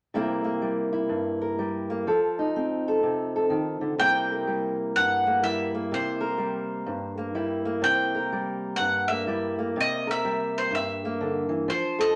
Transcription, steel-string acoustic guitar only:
0.14 C3 G3 A#3 E4 A#4
0.44 A#3
0.62 G3
0.93 E4
1.09 G2
1.41 A#4
1.59 G3
1.90 A#3
2.07 F3 A4
2.39 D#4
2.56 C4
2.88 A4
3.03 C3
3.36 A4
3.50 D#3
3.81 D3
3.98 C3 G3 A#3 E4 A#4
4.32 A#4
4.47 G3
4.96 G2
5.27 A#3
5.43 G3 E4
5.75 A#3
5.92 C3
6.21 A#4
6.38 G3
6.86 G2
7.18 A#3
7.35 G3 E4
7.65 A#3
7.82 C3
8.15 A#4
8.32 G3
8.79 G2
9.10 A#3
9.27 G3 E4
9.59 A#3
9.76 C3
10.07 A#4
10.25 G3
10.70 G2
11.05 A#3
11.21 D3
11.49 E3
11.68 F3
11.99 A4

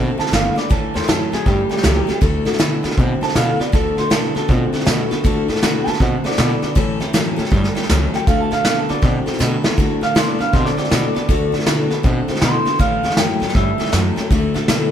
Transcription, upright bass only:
0.19 muted upright bass stroke
0.32 G1
0.71 A1
0.95 E2
1.09 F#2
1.33 A2
1.46 G2
1.71 muted upright bass stroke
1.84 C#2
2.09 muted upright bass stroke
2.22 D2
2.46 A2
2.60 B2
2.84 D3
2.98 B2
3.22 muted upright bass stroke
3.35 B2
3.60 muted upright bass stroke
3.73 D2
3.98 A2
4.11 B2
4.36 D3
4.49 B2
4.73 muted upright bass stroke
4.87 B2
5.12 muted upright bass stroke
5.49 A2
5.63 B2
6.01 B2
6.25 muted upright bass stroke
6.38 B2
6.63 muted upright bass stroke
7.00 E2
7.14 F#2
7.38 A2
7.52 G2
7.77 muted upright bass stroke
7.90 C#2
8.15 muted upright bass stroke
8.27 D2
8.52 A2
8.65 B2
8.90 D3
9.03 B2
9.27 muted upright bass stroke
9.40 B2
9.65 muted upright bass stroke
10.02 A2
10.15 B2
10.54 B2
10.78 muted upright bass stroke
10.91 B2
11.16 muted upright bass stroke
11.29 D2
11.53 A2
11.67 B2
12.04 B2
12.29 muted upright bass stroke
12.42 B2
12.66 muted upright bass stroke
12.80 A1
13.04 E2
13.17 F#2
13.41 A2
13.55 G2
13.80 muted upright bass stroke
13.93 F#2
14.17 muted upright bass stroke
14.31 D2
14.55 A2
14.69 B2

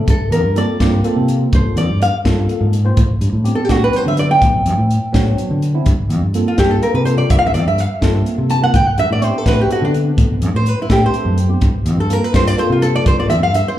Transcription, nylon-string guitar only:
0.10 A4
0.32 A#4
0.58 D5
1.55 C5
1.78 D5
2.02 F5
3.55 A4
3.65 G4
3.71 F#4
3.84 B4
3.96 C5
4.08 E5
4.19 D5
4.31 G5
6.48 F4
6.59 G4
6.71 A4
6.83 A#4
6.95 B4
7.05 C5
7.18 D5
7.30 E5
7.39 F5
7.47 E5
7.54 D5
7.68 E5
7.80 F5
8.50 A5
8.64 F#5
8.76 G5
8.88 F#5
8.99 E5
9.13 D5
9.24 C5
9.38 A4
9.48 B4
9.61 G4
9.72 F#4
9.85 D4
10.56 C5
10.69 B4
10.82 E4
10.92 G4
11.06 C5
12.00 A4
12.13 A#4
12.24 B4
12.36 C5
12.47 D5
12.59 C5
12.72 F4
12.82 A4
12.96 D5
13.07 C5
13.20 D5
13.30 E5
13.43 F5
13.55 E5
13.68 C5

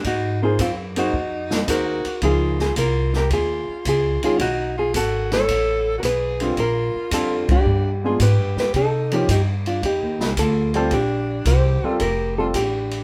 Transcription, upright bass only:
0.04 G#2
0.59 F#2
1.13 F2
1.67 D#2
2.05 muted upright bass stroke
2.22 C#2
2.76 C2
3.30 D#2
3.68 muted upright bass stroke
3.85 C#2
4.23 muted upright bass stroke
4.39 B1
4.94 G#1
5.48 A1
6.03 B1
6.57 A#1
6.94 muted upright bass stroke
7.11 F2
7.48 muted upright bass stroke
7.65 G2
8.19 G#2
8.38 G2
8.56 F2
8.74 C3
9.28 G2
9.82 F2
10.01 D#2
10.19 C2
10.37 D2
10.91 A#1
11.45 C2
11.83 muted upright bass stroke
12.00 F1
12.54 A1

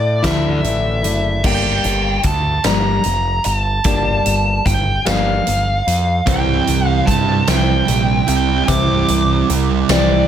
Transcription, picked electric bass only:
Already playing: A2
0.24 D2
0.63 A1
1.03 F#1
1.44 G1
1.85 G1
2.24 D2
2.65 G1
3.06 F1
3.46 G1
3.85 G1
4.26 G1
4.66 G1
5.07 G1
5.48 G1
5.87 F2
6.27 C2
6.68 C2
7.08 G2
7.48 C2
7.88 A#1
8.28 C2
8.69 C2
9.09 C2
9.50 C2
9.89 C2

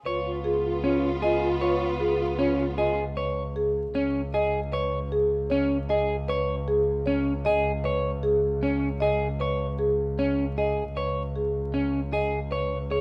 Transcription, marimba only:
0.05 B4
0.44 G#4
0.84 C#5
1.23 D#5
1.61 B4
2.00 G#4
2.39 C#5
2.78 D#5
3.17 B4
3.56 G#4
3.95 C#5
4.34 D#5
4.72 B4
5.12 G#4
5.50 C#5
5.89 D#5
6.28 B4
6.68 G#4
7.06 C#5
7.45 D#5
7.84 B4
8.23 G#4
8.63 C#5
9.00 D#5
9.40 B4
9.79 G#4
10.19 C#5
10.58 D#5
10.97 B4
11.36 G#4
11.74 C#5
12.13 D#5
12.51 B4
12.90 G#4

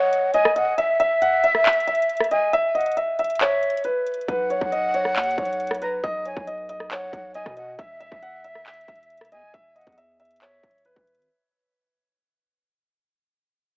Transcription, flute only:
Already playing: F#5
0.34 G#5
0.56 F#5
0.78 E5
2.31 G#5
2.75 F#5
3.41 E5
4.28 F#5
5.82 A#5
6.26 G#5
6.91 F#5
7.35 G#5
7.57 F#5
7.79 E5
9.32 G#5
9.76 F#5
10.42 E5

